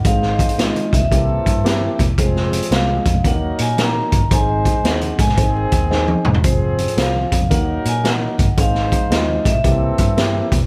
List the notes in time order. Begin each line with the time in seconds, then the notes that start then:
0.04 G#1 G#3 C4 D#4 G#4 C5 F5, kick, closed hi-hat, muted conga
0.22 snare, muted conga
0.39 kick, closed hi-hat, high conga
0.49 closed hi-hat
0.58 G#3 C4 D#4 F4 D#5, snare, closed hi-hat, muted conga
0.76 closed hi-hat, muted conga, high conga
0.93 C2 E5, kick, closed hi-hat
1.01 D#2, low conga
1.11 C2 E3 A#3 C4 E4 G4 A4, kick, closed hi-hat, high conga
1.29 muted conga
1.46 G2, kick, closed hi-hat
1.64 A#3 C4 E4 G4, snare, closed hi-hat, high conga
1.81 muted conga, high conga
1.99 E1, kick, closed hi-hat, low conga
2.18 F1 F3 G#3 C4 F4 G#4 C5, kick, closed hi-hat
2.36 snare
2.52 closed hi-hat, high conga
2.62 closed hi-hat
2.71 C2 G#3 C4 F4 G#4 F5, snare, closed hi-hat
2.89 high conga
3.06 F2, kick, closed hi-hat
3.14 low conga
3.23 D#2 F#3 A#3 D#4 F#4 A#4 F#5, kick, closed hi-hat, high conga
3.59 A#2 G#5, closed hi-hat
3.77 A#3 D#4 F#4 A#4 A#5, snare, closed hi-hat, muted conga, high conga
3.95 high conga
4.12 G1, kick, closed hi-hat, low conga
4.31 G#1 G#3 C4 D#4 G#4 C5 G#5, kick, closed hi-hat
4.49 muted conga
4.65 kick, closed hi-hat, high conga
4.84 D#2 C4 D#4 G#4 C5 F#5, snare, closed hi-hat
5.01 closed hi-hat, high conga
5.19 G#2 G#5, kick, closed hi-hat
5.27 snare, low conga
5.37 G#1 D#3 C4 D#4 G#4 C5, kick, closed hi-hat, muted conga, high conga
5.57 muted conga
5.72 D#2, kick, closed hi-hat, high conga
5.91 C4 D#4 G#4 C5, snare, muted conga, high conga
6.08 high tom, high conga
6.25 E1, mid tom, low conga
6.34 floor tom
6.44 F1 F3 C4 F4 G#4 C5, kick, closed hi-hat
6.78 closed hi-hat, high conga
6.88 closed hi-hat
6.97 C2 C4 F4 G#4 C5 F5, snare, closed hi-hat
7.16 muted conga, high conga
7.32 F2, kick, closed hi-hat
7.40 low conga
7.50 D#2 F#3 A#3 D#4 F#4 A#4 F#5, kick, closed hi-hat, muted conga, high conga
7.85 A#2 G#5, closed hi-hat
8.04 A#3 D#4 F#4 A#4 F#5, snare, closed hi-hat, high conga
8.21 muted conga, high conga
8.38 G1, kick, closed hi-hat, low conga
8.57 G#1 G#3 C4 D#4 G#4 C5 F5, kick, closed hi-hat
8.75 snare
8.92 kick, closed hi-hat, high conga
9.11 D#2 G#3 C4 D#4 F4 D#5, snare, closed hi-hat
9.29 muted conga, high conga
9.45 G#2 E5, kick, closed hi-hat
9.54 low conga
9.63 C2 E3 A#3 C4 E4 G4 A4, kick, closed hi-hat, high conga
9.98 G2, kick, closed hi-hat
10.17 A#3 C4 E4 G4, snare, closed hi-hat, muted conga, high conga
10.35 muted conga, high conga
10.52 E1, kick, closed hi-hat, low conga